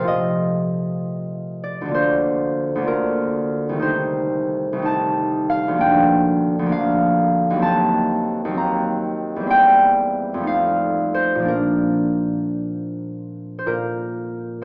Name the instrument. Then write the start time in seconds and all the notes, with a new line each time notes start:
harp
Already playing: C3 C5
0.00 F3 A3 F5
0.05 F4 D#5
1.64 D5
1.81 D2 D3
1.88 A#3 F4
1.94 C5
2.75 D2 D3
2.81 A#3 F4
2.87 A#4
3.69 C2 D#3
3.76 A3 D#4
3.82 C5
4.73 C2 D#3
4.79 A3 D#4
4.85 A5
5.50 F5
5.68 D2 F3
5.74 A#3
5.78 D4 G5
6.59 D2 F3
6.66 A#3 D4
6.72 F5
7.50 D#2 F#3
7.56 A#3 C4
7.62 A5
8.45 D#2 F#3
8.51 A#3 C4
8.57 A#5
9.36 E2 G3
9.43 A#3 C4
9.50 G5
10.34 F2 G3
10.41 A3 D#4
10.47 F5
11.14 C5
11.35 A#2 F3
11.42 A#3 D4
11.48 A#4
13.59 C5
13.66 A#2 A#4